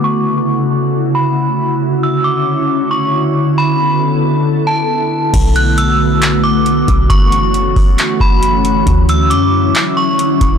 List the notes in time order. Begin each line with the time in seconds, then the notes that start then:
Already playing: A3 F#4
0.04 C#3 E4 C#6
1.15 B5
1.81 D3 C#4
2.03 E6
2.24 D6
2.91 C#6
3.57 B3 A4 B5
4.67 A5
5.34 B1 D3 A3 B3 F#4, kick, closed hi-hat, crash
5.56 F#6, closed hi-hat
5.78 E6, closed hi-hat
6.22 clap, closed hi-hat
6.44 D6
6.66 closed hi-hat
6.88 B1, kick, closed hi-hat
7.10 F#1 E3 A3 C#4 F#4 C#6, kick, closed hi-hat
7.32 closed hi-hat
7.54 closed hi-hat
7.76 F#1, kick, open hi-hat
7.98 clap, closed hi-hat
8.20 F#1 B5, kick
8.43 closed hi-hat
8.65 closed hi-hat
8.87 D2 D3 F#3 E4, kick, closed hi-hat
9.09 E6, closed hi-hat
9.30 F#2 D6, closed hi-hat
9.75 clap, closed hi-hat
9.97 C#6
10.19 closed hi-hat
10.41 E1, kick, closed hi-hat